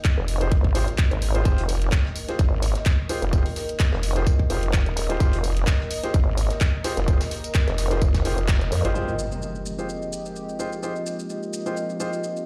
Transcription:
Already playing: A#4 D#5
0.05 kick, clap, closed hi-hat
0.18 F1
0.28 open hi-hat
0.41 F4 G4 G#4 C5, closed hi-hat
0.52 G#1, kick, closed hi-hat
0.64 kick
0.75 F4 G4 G#4 C5, open hi-hat
0.88 closed hi-hat
0.98 kick, clap, closed hi-hat
1.11 G#1, closed hi-hat
1.22 open hi-hat
1.35 F4 G4 G#4 C5, closed hi-hat
1.45 F1 F4 G4 G#4 C5, kick, closed hi-hat, tambourine
1.58 closed hi-hat
1.69 open hi-hat, tambourine
1.82 closed hi-hat
1.92 kick, snare, clap, closed hi-hat, tambourine
2.05 snare
2.16 open hi-hat, tambourine
2.28 F4 G4 G#4 C5, snare, closed hi-hat
2.39 G#1, kick, closed hi-hat, tambourine
2.62 open hi-hat, tambourine
2.75 snare, closed hi-hat
2.86 kick, snare, clap, closed hi-hat, tambourine
3.09 F4 G4 G#4 C5, open hi-hat, tambourine
3.22 F1, closed hi-hat
3.33 F4 G4 G#4 C5, kick, closed hi-hat, tambourine
3.46 open hi-hat
3.56 snare, open hi-hat, tambourine
3.69 closed hi-hat
3.80 kick, snare, clap, closed hi-hat, tambourine
3.93 F1, snare
4.03 open hi-hat, tambourine
4.16 F4 G4 G#4 C5, snare, closed hi-hat
4.27 kick, closed hi-hat, tambourine
4.39 kick
4.50 F1 F4 G4 G#4 C5, open hi-hat, tambourine
4.63 closed hi-hat
4.73 kick, snare, clap, closed hi-hat, tambourine
4.86 D#1, closed hi-hat
4.97 open hi-hat, tambourine
5.10 F4 G4 G#4 C5, closed hi-hat
5.20 F1 F4 G4 G#4 C5, kick, closed hi-hat, tambourine
5.33 closed hi-hat
5.44 open hi-hat, tambourine
5.57 closed hi-hat
5.67 kick, snare, clap, closed hi-hat, tambourine
5.80 snare
5.91 open hi-hat, tambourine
6.03 F4 G4 G#4 C5, snare, closed hi-hat
6.14 G#1, kick, closed hi-hat, tambourine
6.38 open hi-hat, tambourine
6.50 snare, closed hi-hat
6.61 kick, snare, clap, closed hi-hat, tambourine
6.84 F4 G4 G#4 C5, snare, open hi-hat, tambourine
6.97 F1, snare, closed hi-hat
7.08 F4 G4 G#4 C5, kick, closed hi-hat, tambourine
7.21 snare, open hi-hat, tambourine
7.31 snare, open hi-hat
7.44 closed hi-hat, tambourine
7.55 kick, snare, clap, closed hi-hat, tambourine
7.68 F1, snare, closed hi-hat
7.78 snare, open hi-hat, tambourine
7.91 F4 G4 G#4 C5, snare, closed hi-hat
8.02 F1, kick, closed hi-hat, tambourine
8.14 kick, snare, closed hi-hat, tambourine
8.25 F1 F4 G4 G#4 C5, open hi-hat
8.38 closed hi-hat
8.48 kick, snare, clap, closed hi-hat, tambourine
8.61 closed hi-hat
8.72 F2, open hi-hat, tambourine
8.85 G#1 F4 G4 G#4 C5, closed hi-hat
8.95 F3 G#3 C4 F4 G4 G#4 C5, impact, shaker
9.08 shaker
9.19 shaker
9.32 shaker
9.42 shaker
9.55 shaker
9.66 shaker
9.78 F4 G4 G#4 C5, shaker
9.89 shaker
10.02 shaker
10.13 shaker
10.25 shaker
10.36 shaker
10.49 shaker
10.59 F4 G4 G#4 C5, shaker
10.72 shaker
10.83 F4 G4 G#4 C5, shaker
10.96 shaker
11.06 shaker
11.19 shaker
11.30 shaker
11.43 shaker
11.53 shaker
11.66 F4 G4 G#4 C5, shaker
11.77 shaker
11.90 shaker
12.00 F4 G4 G#4 C5, shaker
12.13 shaker
12.23 shaker
12.36 shaker

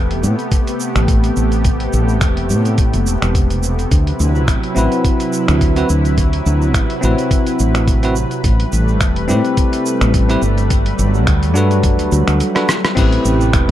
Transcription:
Already playing: E1 C3 A3 B3 G4
0.11 closed hi-hat
0.23 A2, shaker
0.39 closed hi-hat, shaker
0.52 kick, closed hi-hat, shaker
0.67 closed hi-hat, shaker
0.80 shaker
0.96 A1, finger snap, closed hi-hat, shaker
1.08 kick, closed hi-hat, shaker
1.24 closed hi-hat, shaker
1.36 A1, shaker
1.52 closed hi-hat, shaker
1.64 kick, closed hi-hat, shaker
1.80 closed hi-hat
1.93 A1, shaker
2.08 shaker
2.21 E1, finger snap, kick, closed hi-hat, shaker
2.37 closed hi-hat
2.50 A2, shaker
2.65 closed hi-hat, shaker
2.78 kick, closed hi-hat, shaker
2.94 G1, closed hi-hat, shaker
3.07 E1, shaker
3.22 E1, finger snap, closed hi-hat, shaker
3.35 kick, closed hi-hat, shaker
3.50 closed hi-hat, shaker
3.63 shaker
3.79 closed hi-hat, shaker
3.91 D2 F#3 E4 B4, kick, closed hi-hat, shaker
4.07 closed hi-hat
4.20 D2, shaker
4.35 shaker
4.48 A1, finger snap, kick, closed hi-hat, shaker
4.64 closed hi-hat
4.75 A1 C4 E4 F#4 B4, shaker
4.92 closed hi-hat, shaker
5.05 kick, closed hi-hat, shaker
5.20 closed hi-hat, shaker
5.33 shaker
5.48 D2, finger snap, closed hi-hat, shaker
5.61 kick, closed hi-hat, shaker
5.76 C4 E4 F#4 B4, closed hi-hat, shaker
5.89 D2, shaker
6.05 closed hi-hat, shaker
6.18 kick, closed hi-hat, shaker
6.33 closed hi-hat
6.46 D2, shaker
6.62 shaker
6.74 A1, finger snap, kick, closed hi-hat, shaker
6.90 closed hi-hat
7.01 A1 C4 E4 F#4 B4, shaker
7.18 closed hi-hat, shaker
7.31 kick, closed hi-hat, shaker
7.47 closed hi-hat, shaker
7.59 A1, shaker
7.75 finger snap, closed hi-hat, shaker
7.88 kick, closed hi-hat, shaker
8.03 C4 E4 F#4 B4, closed hi-hat, shaker
8.16 shaker
8.31 closed hi-hat, shaker
8.44 A1 G3 A3, kick, closed hi-hat, shaker
8.60 closed hi-hat
8.72 A1, shaker
8.88 shaker
9.01 E1, finger snap, kick, closed hi-hat, shaker
9.16 closed hi-hat
9.28 A2 C4 E4 G4 B4, shaker
9.45 closed hi-hat, shaker
9.57 kick, closed hi-hat, shaker
9.73 closed hi-hat, shaker
9.86 shaker
10.01 A1, finger snap, closed hi-hat, shaker
10.14 kick, closed hi-hat, shaker
10.29 C4 E4 G4 B4, closed hi-hat, shaker
10.42 G1, shaker
10.58 closed hi-hat, shaker
10.70 F#3, kick, closed hi-hat, shaker
10.86 closed hi-hat
10.99 G1, shaker
11.14 shaker
11.27 D2, finger snap, kick, closed hi-hat, shaker
11.43 closed hi-hat, shaker
11.54 G2 D4 F#4 A4 B4, shaker
11.71 closed hi-hat, shaker
11.83 kick, closed hi-hat, shaker
11.99 D2, closed hi-hat, shaker
12.12 D2, shaker
12.28 D2, finger snap, closed hi-hat, shaker
12.40 closed hi-hat, shaker
12.55 D4 F#4 A4 B4, cross-stick, closed hi-hat, shaker
12.69 cross-stick, shaker
12.85 cross-stick, closed hi-hat, shaker
12.95 A1 C3 A3 C4 E4 G4 B4, kick, closed hi-hat, crash, shaker
13.13 closed hi-hat
13.25 A1, shaker
13.41 shaker
13.53 E1, finger snap, kick, closed hi-hat, shaker

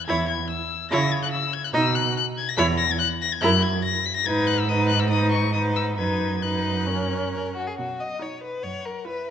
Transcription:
0.06 E2 E4 C#5 G#6
0.28 G#6
0.50 E6
0.91 C#3 E4 C#5 A#6
1.11 G#6
1.23 F#6
1.31 E6
1.53 G#6
1.64 F#6
1.73 B2 D#4 D#5 E6
1.95 F#6
2.17 F#6
2.38 G#6
2.48 A#6
2.57 E2 E4 C#5 B6
2.77 A#6
2.90 G#6
2.99 F#6
3.21 A#6
3.32 G#6
3.41 F#2 E4 A#4 F#6
3.63 G#6
3.84 A#6
4.05 B6
4.16 A#6
4.26 G#2 D#4 B4 G#6
4.47 F#6
4.59 E6
4.68 D#4 B4 D#6
4.89 F#6
4.99 E6
5.10 D#4 B4 D#6
5.31 C#6
5.53 D#4 B4 D#6
5.76 E6
5.98 F#2 D#4 B4 G#6
6.42 D#4 B4 F#6
6.87 C#4 A#4
7.33 A#4
7.56 F#4
7.67 G#4
7.78 B2 F#4
8.00 D#5
8.20 D#4 C#5
8.43 B4
8.63 F#2 C#5 F#5
8.86 A#4
9.05 E4 B4 E5

